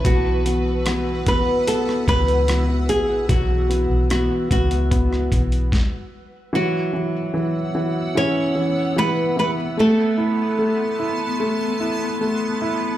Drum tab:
HH |x-x-x-x-x-xxx-x-|x-x-x-xxx-xx----|----------------|----------------|
SD |----r----r--r---|----r----r--o---|----------------|----------------|
BD |o-----o---o-----|o-----o-o-o-o---|----------------|----------------|